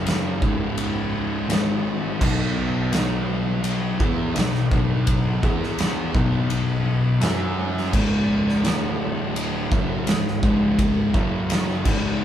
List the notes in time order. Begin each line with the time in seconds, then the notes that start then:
Already playing: F#1 F#2 C#3 F#3
0.07 snare, ride bell
0.41 C#1 C#2 G#2 C#3, kick
0.78 ride bell
1.49 G#1 G#2 D#3 G#3, snare, ride bell
2.21 B1 B2 F#3 B3, kick, crash
2.92 B1 B2 F#3 B3, snare, ride bell
3.64 ride bell
4.00 E2 E3 B3 E4, kick
4.34 B1 B2 F#3, snare, ride bell
4.55 snare
4.71 B1 B2 F#3 B3, kick
5.07 kick, ride bell
5.43 E2 E3 B3 E4, kick
5.64 snare
5.79 snare, ride bell
6.14 B1 B2 F#3 B3, kick
6.50 ride bell
7.21 F#2 F#3 C#4 F#4, snare, ride bell
7.78 snare
7.93 C#1 C#2 G#2 C#3, kick, crash
8.49 snare
8.64 D1 D2 A2 D3, snare, ride bell
9.36 ride bell
9.71 F#1 F#2 C#3 F#3, kick
10.07 C#1 C#2 G#2, snare, ride bell
10.28 snare
10.43 C#1 C#2 G#2 C#3, kick
10.79 kick, ride bell
11.14 F#1 F#2 C#3 F#3, kick
11.50 snare, ride bell
11.85 C#1 C#2 G#2 C#3, kick, crash